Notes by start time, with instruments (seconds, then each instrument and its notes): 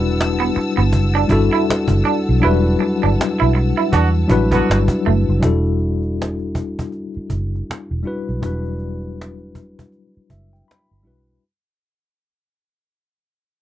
Already playing: fingered electric bass E1, tine electric piano G3 D4 E4 F#4 A4 B4, string section G3 F#5 A5 E6
0.00 cajon slap
0.21 cajon slap
0.38 clean electric guitar B3, cajon slap
0.55 muted clean electric guitar stroke, muted fingered electric bass stroke, cajon slap
0.77 fingered electric bass G1, clean electric guitar B3, cajon slap
0.93 fingered electric bass F#1, cajon bass
1.14 clean electric guitar D4, cajon slap
1.28 fingered electric bass G1, tine electric piano G3 D4 E4 F#4, muted clean electric guitar stroke, cajon bass
1.32 tine electric piano A4
1.53 clean electric guitar E4, cajon slap
1.70 muted fingered electric bass stroke, cajon slap
1.88 fingered electric bass F#1, cajon bass
2.03 clean electric guitar D4, cajon slap
2.28 fingered electric bass B1, cajon slap
2.40 tine electric piano F#3 D4 E4 F#4, clean electric guitar E4, cajon slap
2.44 fingered electric bass E1, tine electric piano G3 B4
2.63 cajon slap
2.66 cajon slap
2.78 muted clean electric guitar stroke, cajon slap
3.01 fingered electric bass G1, clean electric guitar D4, cajon slap
3.21 cajon slap
3.38 fingered electric bass B1, clean electric guitar E4, cajon slap
3.55 muted clean electric guitar stroke, cajon slap
3.77 clean electric guitar E4, cajon slap
3.92 fingered electric bass E2, horn section D3 B3 F#4, clean electric guitar D4, cajon bass
4.14 cajon slap
4.27 fingered electric bass A1, tine electric piano F#3 D4 E4 F#4, muted clean electric guitar stroke, cajon bass
4.32 tine electric piano G3 B4
4.51 horn section D3 B3 F#4, clean electric guitar B3, cajon bass
4.70 fingered electric bass G1, cajon slap
4.88 cajon bass
5.04 fingered electric bass F#1, clean electric guitar A3, cajon slap
5.29 fingered electric bass F#1, cajon slap
5.40 fingered electric bass E1, tine electric piano F#3 D4 E4 F#4, cajon bass
5.45 tine electric piano G3 A4
5.65 cajon slap
5.79 cajon slap
6.02 cajon slap
6.22 cajon slap
6.39 cajon slap
6.55 cajon bass
6.79 cajon bass
6.92 cajon slap
7.15 muted fingered electric bass stroke, cajon slap
7.30 fingered electric bass F#1, cajon bass
7.55 cajon slap
7.70 muted fingered electric bass stroke, cajon slap
7.91 fingered electric bass E1, cajon slap
8.03 tine electric piano G3 D4 E4 F#4, cajon slap
8.07 tine electric piano B4
8.29 fingered electric bass B1, cajon slap
8.41 fingered electric bass E1, tine electric piano F#3 D4 E4 F#4, cajon bass
8.46 tine electric piano G3 B4
8.65 cajon slap
8.79 cajon slap
9.01 cajon slap
9.21 cajon slap
9.39 cajon slap
9.55 cajon bass
9.79 cajon bass
9.92 cajon slap
10.17 muted fingered electric bass stroke
10.30 fingered electric bass F#1, tine electric piano E5, cajon bass
10.53 tine electric piano G5, cajon slap
10.68 tine electric piano B5, cajon slap
10.91 fingered electric bass G1
11.03 tine electric piano G3 D4 E4 F#4
11.07 fingered electric bass B1, tine electric piano B4